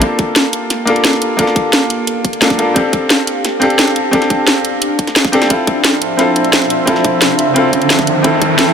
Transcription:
0.00 0.84 A#3 medium
0.00 2.73 A#3 medium
0.00 0.85 D4 medium
0.00 0.86 F4 medium
0.00 2.73 G4 medium
0.00 5.46 A4 medium
0.00 0.86 A4 medium
0.00 5.46 F5 medium
0.00 kick loud
0.00 closed hi-hat medium
0.19 kick loud
0.19 closed hi-hat medium
0.36 snare loud
0.36 closed hi-hat medium
0.53 closed hi-hat medium
0.70 snare soft
0.70 closed hi-hat medium
0.85 1.35 A#3 medium
0.85 1.36 D4 medium
0.85 1.37 F4 medium
0.85 1.38 A4 medium
0.85 closed hi-hat medium
0.96 closed hi-hat soft
1.05 snare loud
1.05 closed hi-hat loud
1.13 closed hi-hat soft
1.22 closed hi-hat medium
1.37 2.39 A#3 medium
1.37 2.39 D4 medium
1.37 2.40 F4 medium
1.37 2.41 A4 medium
1.37 kick loud
1.37 closed hi-hat medium
1.47 snare soft
1.56 kick loud
1.56 closed hi-hat medium
1.73 snare loud
1.73 closed hi-hat medium
1.90 closed hi-hat medium
2.07 closed hi-hat medium
2.25 kick medium
2.25 closed hi-hat medium
2.33 closed hi-hat soft
2.41 2.56 A#3 medium
2.41 2.57 D4 medium
2.41 2.57 F4 medium
2.41 2.57 A4 medium
2.41 snare loud
2.41 closed hi-hat medium
2.50 kick loud
2.50 closed hi-hat soft
2.58 2.73 A#3 medium
2.58 2.74 D4 medium
2.58 2.74 F4 medium
2.58 2.74 A4 medium
2.58 closed hi-hat medium
2.74 3.58 C4 medium
2.74 3.59 D4 medium
2.74 8.20 D4 medium
2.74 5.47 G4 medium
2.74 3.60 G4 medium
2.74 3.61 A4 medium
2.74 kick loud
2.74 closed hi-hat medium
2.93 kick loud
2.93 closed hi-hat medium
3.10 snare loud
3.10 closed hi-hat medium
3.27 closed hi-hat medium
3.45 snare soft
3.45 closed hi-hat medium
3.60 4.10 C4 medium
3.60 4.11 D4 medium
3.60 4.11 G4 medium
3.60 4.12 A4 loud
3.60 closed hi-hat medium
3.70 closed hi-hat soft
3.79 snare loud
3.79 closed hi-hat medium
3.87 closed hi-hat soft
3.96 closed hi-hat medium
4.11 5.13 C4 medium
4.11 5.14 D4 medium
4.11 5.14 G4 medium
4.11 5.15 A4 loud
4.11 kick loud
4.11 closed hi-hat medium
4.22 snare soft
4.22 closed hi-hat soft
4.30 kick loud
4.30 closed hi-hat medium
4.47 snare loud
4.47 closed hi-hat medium
4.65 closed hi-hat medium
4.82 closed hi-hat medium
4.99 kick medium
4.99 closed hi-hat medium
5.07 snare soft
5.07 closed hi-hat soft
5.16 snare loud
5.16 closed hi-hat medium
5.25 kick loud
5.25 closed hi-hat soft
5.32 5.47 C4 loud
5.32 5.48 D4 medium
5.32 5.48 G4 medium
5.32 5.49 A4 loud
5.32 closed hi-hat medium
5.42 snare medium
5.42 closed hi-hat soft
5.48 8.22 F3 medium
5.48 6.15 C4 medium
5.48 6.17 E4 medium
5.48 6.18 F4 medium
5.48 6.18 A4 medium
5.48 8.22 C5 medium
5.48 8.22 E5 medium
5.48 kick loud
5.48 closed hi-hat medium
5.48 riser medium
5.67 kick loud
5.67 closed hi-hat medium
5.84 snare loud
5.84 closed hi-hat medium
6.02 closed hi-hat medium
6.17 6.84 C4 medium
6.17 6.85 E4 medium
6.17 6.86 F4 medium
6.17 6.87 A4 medium
6.17 snare soft
6.17 closed hi-hat medium
6.36 closed hi-hat medium
6.45 closed hi-hat soft
6.53 snare loud
6.53 closed hi-hat medium
6.62 closed hi-hat soft
6.70 closed hi-hat medium
6.85 7.53 C4 medium
6.85 7.54 E4 medium
6.85 7.55 F4 medium
6.85 7.56 A4 medium
6.85 kick loud
6.85 closed hi-hat medium
6.96 snare soft
7.04 kick loud
7.04 closed hi-hat medium
7.22 snare loud
7.22 closed hi-hat medium
7.39 closed hi-hat medium
7.54 8.21 C4 medium
7.54 8.22 E4 medium
7.54 8.23 F4 medium
7.54 8.24 A4 medium
7.54 closed hi-hat medium
7.73 kick medium
7.73 closed hi-hat medium
7.82 closed hi-hat soft
7.90 snare loud
7.90 closed hi-hat medium
7.99 kick loud
7.99 closed hi-hat soft
8.07 closed hi-hat medium
8.23 8.55 C4 medium
8.23 8.73 C4 medium
8.23 8.57 E4 medium
8.23 8.73 A4 medium
8.23 8.58 A4 medium
8.23 8.73 G5 medium
8.23 kick loud
8.23 closed hi-hat medium
8.42 kick loud
8.42 closed hi-hat medium
8.57 8.73 C4 medium
8.57 8.73 E4 medium
8.57 8.73 A4 medium
8.57 snare loud
8.57 closed hi-hat medium

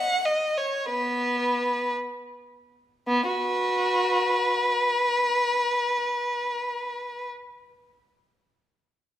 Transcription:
0.00 0.25 F#5 medium
0.25 0.57 D#5 medium
0.57 0.90 C#5 soft
0.89 1.90 B3 soft
0.89 1.92 B4 medium
3.07 3.29 B3 medium
3.28 4.71 F#4 soft
3.28 7.24 B4 medium

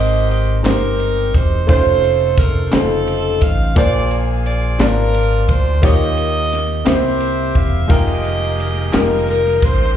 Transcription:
0.00 0.62 G#1 loud
0.00 0.61 G#2 medium
0.00 0.59 G#3 medium
0.00 0.59 C4 medium
0.00 0.60 D#4 medium
0.00 0.60 G4 medium
0.00 0.62 G4 medium
0.00 0.60 A#4 medium
0.00 0.62 C5 medium
0.00 0.27 D#5 loud
0.31 0.63 D#5 loud
0.31 ride soft
0.63 1.31 G1 medium
0.63 1.62 G#3 medium
0.63 1.62 C4 medium
0.63 1.63 D#4 medium
0.63 1.63 G4 medium
0.63 1.63 C5 medium
0.63 snare loud
0.63 clap medium
0.63 ride medium
0.67 1.66 D#4 medium
0.67 1.66 G4 medium
0.67 1.35 A#4 loud
1.00 ride soft
1.34 1.66 E1 medium
1.34 1.69 C5 medium
1.34 kick medium
1.34 ride soft
1.67 2.69 F1 loud
1.67 2.66 A3 medium
1.67 2.66 C#4 medium
1.67 2.66 D#4 medium
1.67 2.69 D#4 medium
1.67 2.67 F4 medium
1.67 2.70 A4 medium
1.67 2.67 C5 medium
1.67 2.35 C5 loud
1.67 kick loud
1.67 ride medium
2.04 ride soft
2.38 2.71 A#4 loud
2.38 kick loud
2.38 snare soft
2.38 ride soft
2.71 3.38 F1 medium
2.71 3.70 C#3 medium
2.71 2.78 G#3 medium
2.71 3.73 C4 medium
2.71 3.70 D#4 medium
2.71 3.73 D#4 medium
2.71 3.71 F4 medium
2.71 3.42 A4 medium
2.71 3.71 C5 medium
2.71 snare loud
2.71 clap medium
2.71 ride medium
2.77 3.73 A3 medium
3.07 ride medium
3.42 3.74 A1 medium
3.42 3.77 F5 loud
3.42 kick medium
3.42 ride soft
3.76 4.76 A#1 loud
3.76 4.76 A#2 medium
3.76 4.74 A#3 medium
3.76 4.74 D4 medium
3.76 4.74 F4 medium
3.76 4.77 F4 medium
3.76 4.75 G#4 medium
3.76 4.77 G#4 medium
3.76 4.75 C5 medium
3.76 4.16 D5 loud
3.76 kick loud
3.76 ride medium
4.11 ride soft
4.46 4.78 D5 medium
4.46 ride soft
4.79 5.45 G#1 loud
4.79 5.77 A#3 medium
4.79 5.77 D4 medium
4.79 5.77 F4 medium
4.79 5.78 G#4 medium
4.79 5.50 A#4 loud
4.79 5.78 D5 medium
4.79 snare loud
4.79 clap medium
4.79 ride medium
4.83 5.81 D4 medium
4.83 5.81 F4 medium
5.14 ride medium
5.48 5.81 D2 medium
5.48 5.84 C5 loud
5.48 kick loud
5.48 ride soft
5.82 6.83 D#2 loud
5.82 6.82 D#3 medium
5.82 6.80 A#3 medium
5.82 6.80 D#4 medium
5.82 6.81 F4 medium
5.82 6.81 G4 medium
5.82 6.84 G4 medium
5.82 6.84 A#4 medium
5.82 6.81 C#5 loud
5.82 6.88 D#5 loud
5.82 kick loud
5.82 ride medium
6.17 ride soft
6.53 snare soft
6.53 ride soft
6.84 7.52 C2 loud
6.84 7.86 C3 medium
6.84 7.83 A#3 medium
6.84 7.83 C4 medium
6.84 7.84 E4 medium
6.84 7.84 G4 medium
6.84 7.87 G4 medium
6.84 7.84 C5 medium
6.84 7.56 C5 loud
6.84 7.86 E5 medium
6.84 snare loud
6.84 clap medium
6.84 ride medium
7.20 ride medium
7.55 7.87 E1 medium
7.55 7.91 F5 medium
7.55 kick medium
7.55 ride soft
7.87 8.89 F1 loud
7.87 9.93 D#3 medium
7.87 9.93 G#3 medium
7.87 8.87 G#3 medium
7.87 9.97 A#3 medium
7.87 8.87 D#4 medium
7.87 8.87 F4 medium
7.87 8.90 G4 medium
7.87 8.88 A#4 loud
7.87 9.94 G5 medium
7.87 8.88 G5 medium
7.87 kick loud
7.87 ride medium
7.91 8.90 G#4 medium
7.91 8.60 D#5 loud
8.25 ride soft
8.60 8.92 D#5 medium
8.60 ride soft
8.92 9.59 F1 loud
8.92 8.99 G3 medium
8.92 9.90 D#4 medium
8.92 9.91 F4 medium
8.92 9.91 G4 medium
8.92 9.91 A#4 medium
8.92 9.28 A#4 medium
8.92 snare loud
8.92 clap medium
8.92 ride medium
8.98 9.94 G#3 medium
9.28 9.61 A#4 medium
9.28 ride soft
9.62 9.94 A1 medium
9.62 9.97 C5 loud
9.62 kick loud
9.62 ride soft

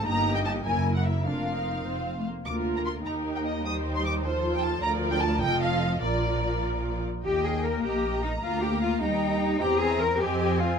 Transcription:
0.05 0.61 G1 medium
0.05 0.61 G2 medium
0.05 0.61 A#3 medium
0.05 0.61 D#4 medium
0.05 0.61 G4 medium
0.05 0.61 D#5 medium
0.05 0.35 A#5 medium
0.36 0.39 G5 medium
0.45 0.53 A5 medium
0.65 1.25 F#1 medium
0.65 1.25 F#2 medium
0.65 1.23 A#3 soft
0.65 1.23 E4 soft
0.65 1.23 A#4 soft
0.65 0.94 G#5 medium
0.96 1.05 F#5 medium
1.05 1.25 E5 medium
1.24 1.84 F1 soft
1.24 1.83 F2 soft
1.24 1.84 A#3 soft
1.24 1.55 D4 soft
1.24 1.84 F4 soft
1.24 1.84 A#4 soft
1.24 2.24 F5 medium
1.54 1.85 D#4 soft
1.84 2.25 F1 soft
1.84 2.24 F2 soft
1.84 2.13 C4 soft
1.84 2.25 F4 soft
1.84 2.25 C5 soft
2.16 2.26 A3 soft
2.26 2.34 A#3 soft
2.45 3.01 D2 soft
2.45 3.01 A#3 soft
2.45 3.01 F4 soft
2.45 3.01 A#4 soft
2.45 2.54 D6 medium
2.76 2.80 A#5 medium
2.85 2.93 C6 medium
3.05 4.82 D#2 soft
3.05 3.64 A#3 soft
3.05 3.64 D#4 soft
3.05 3.63 G4 soft
3.05 3.63 A#4 soft
3.05 3.13 A#5 medium
3.36 3.40 G5 medium
3.45 3.64 D#5 medium
3.64 4.22 G3 soft
3.64 4.22 D#4 soft
3.64 4.22 G4 soft
3.64 4.22 C5 soft
3.64 3.73 D#6 medium
3.95 4.04 C6 medium
4.05 4.13 D6 medium
4.23 4.81 F3 medium
4.23 4.81 F4 medium
4.23 4.81 A4 soft
4.23 4.80 C5 medium
4.23 4.52 C5 medium
4.54 4.63 G5 medium
4.63 4.82 A5 medium
4.81 5.40 D2 medium
4.81 5.40 F3 medium
4.81 5.40 F4 medium
4.81 5.39 A#4 medium
4.81 5.41 D5 medium
4.81 4.90 A#5 medium
5.11 5.21 G5 medium
5.21 5.40 A5 medium
5.40 6.01 F1 medium
5.40 6.02 F2 medium
5.40 6.00 F3 medium
5.40 6.00 F4 medium
5.40 6.01 A4 medium
5.40 6.01 D#5 medium
5.40 5.60 G5 medium
5.61 6.01 F5 medium
6.01 7.02 A#1 soft
6.01 7.02 A#2 medium
6.01 7.02 F3 soft
6.01 7.02 F4 soft
6.01 7.04 A#4 soft
6.01 7.02 D5 medium
6.01 6.62 D5 medium
7.24 7.80 D#2 medium
7.24 8.39 A#3 medium
7.24 7.43 G4 medium
7.24 7.80 D#5 soft
7.24 7.80 G5 medium
7.44 7.64 G#4 medium
7.63 7.84 A#4 medium
7.84 8.42 A#1 medium
7.84 8.23 G4 medium
7.84 8.42 D#5 soft
7.84 9.00 A#5 medium
8.23 8.31 D#4 medium
8.42 9.00 D2 medium
8.42 9.00 A#3 medium
8.42 8.61 F4 medium
8.42 9.00 F5 medium
8.62 8.82 G4 medium
8.82 9.01 F4 medium
9.01 9.58 D#2 medium
9.01 9.60 G3 medium
9.01 9.58 D#4 medium
9.01 9.58 G5 medium
9.01 9.59 A#5 medium
9.60 10.15 E2 medium
9.60 10.16 C4 medium
9.60 9.79 G4 loud
9.60 9.68 G5 medium
9.60 10.16 A#5 medium
9.79 9.99 G#4 medium
9.90 9.98 E5 medium
9.99 10.19 A#4 medium
10.19 10.79 F2 medium
10.19 10.79 C4 medium
10.19 10.59 G4 medium
10.19 10.79 D#5 medium
10.19 10.79 G#5 medium
10.60 10.79 F4 medium

